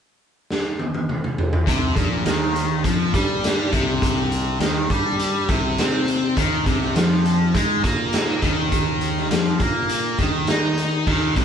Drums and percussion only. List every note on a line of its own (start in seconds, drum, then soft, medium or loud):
0.51 snare medium
0.79 high tom medium
0.94 high tom medium
1.09 mid tom medium
1.24 mid tom medium
1.38 floor tom medium
1.53 floor tom medium
1.67 kick loud
1.67 closed hi-hat loud
1.96 kick loud
1.96 closed hi-hat medium
2.26 snare loud
2.26 closed hi-hat medium
2.56 closed hi-hat medium
2.84 kick loud
2.84 closed hi-hat medium
3.14 kick loud
3.14 closed hi-hat medium
3.44 snare loud
3.44 closed hi-hat loud
3.73 kick loud
3.73 closed hi-hat medium
4.02 kick loud
4.02 closed hi-hat loud
4.32 closed hi-hat medium
4.60 snare loud
4.60 closed hi-hat medium
4.90 kick medium
4.90 closed hi-hat medium
5.19 closed hi-hat medium
5.49 kick loud
5.49 closed hi-hat medium
5.78 snare loud
5.78 closed hi-hat medium
6.08 closed hi-hat medium
6.37 kick loud
6.37 closed hi-hat medium
6.66 kick loud
6.66 closed hi-hat medium
6.82 snare soft
6.96 snare loud
6.96 closed hi-hat medium
7.25 closed hi-hat medium
7.55 kick loud
7.55 closed hi-hat medium
7.84 kick loud
7.84 closed hi-hat medium
8.13 snare loud
8.13 closed hi-hat loud
8.42 kick loud
8.42 closed hi-hat medium
8.72 kick loud
8.72 closed hi-hat medium
9.01 closed hi-hat medium
9.17 snare soft
9.31 snare loud
9.31 closed hi-hat loud
9.60 kick medium
9.60 closed hi-hat medium
9.89 closed hi-hat medium
10.19 kick loud
10.19 closed hi-hat medium
10.47 snare loud
10.47 closed hi-hat medium
10.78 closed hi-hat medium
11.07 kick loud
11.07 crash medium
11.36 kick loud
11.36 closed hi-hat medium